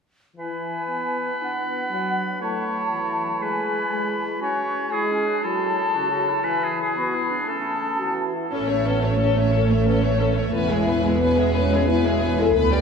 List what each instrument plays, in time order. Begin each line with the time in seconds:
0.36 french horn section E3, oboe B4, flute section G#5
0.41 clarinet E4
0.88 french horn section B3
1.41 french horn section B3, clarinet D4, flute section F#5
1.90 french horn section F#3
2.40 french horn section A3, clarinet E4, oboe C#5, flute section A5
2.91 french horn section E3
3.40 french horn section G#3, oboe B4, flute section G#5
3.90 french horn section G#3
4.40 french horn section C#4, clarinet F#4, oboe C#5, flute section G#5
4.92 french horn section G#3, clarinet E4, oboe G#4
5.11 clarinet C#4
5.26 clarinet D4
5.42 french horn section F#3, clarinet E4, oboe A4, flute section A5
5.95 french horn section C#3, clarinet F#4
6.10 clarinet F#4
6.29 clarinet E4
6.44 french horn section E3, clarinet E4, oboe B4, flute section G#5
6.64 oboe G#4
6.81 oboe G#4
6.95 french horn section B3, clarinet F#4, flute section B5
7.14 clarinet E4
7.30 clarinet D4
7.46 french horn section A3, clarinet C#4, oboe A4, flute section A5
7.99 french horn section E3 F#4
8.34 french horn section E4
8.51 double bass section A1, cello section A2, french horn section C#4, viola section C#4, violin section A4 C#5
8.67 viola section A3, violin section C#5 E5
8.85 french horn section B3, viola section C#4, violin section A4 C#5
9.02 viola section A3, french horn section C#4, violin section C#5 E5
9.19 viola section C#4, violin section A4 C#5
9.36 viola section A3, french horn section C#4, violin section C#5 E5
9.53 french horn section A3, viola section C#4, violin section A4 C#5
9.70 viola section A3, violin section C#5 E5
9.86 french horn section B3, viola section C#4, violin section A4 C#5
10.02 viola section A3, french horn section C#4, violin section C#5 E5
10.20 viola section C#4, violin section A4 C#5
10.37 viola section A3, violin section C#5 E5
10.53 double bass section E1, cello section E2, viola section B3, french horn section E4, violin section B4 G#5
10.70 viola section G#3, violin section G#4 E5
10.86 viola section B3, violin section B4 G#5
11.04 viola section G#3, french horn section B3, violin section G#4 E5
11.21 viola section B3, violin section B4 G#5
11.37 viola section G#3, violin section G#4 E5
11.53 viola section B3, french horn section C#4, violin section B4 G#5
11.70 viola section G#3, violin section G#4 E5
11.87 viola section B3, french horn section E4, violin section B4 G#5
12.04 viola section G#3, violin section G#4 E5
12.20 viola section B3, violin section B4 G#5
12.38 viola section G#3, violin section G#4 E5, french horn section A4
12.54 cello section D2, double bass section D2, viola section B3, violin section B4 B5, french horn section B4
12.72 viola section G3, violin section D5 G5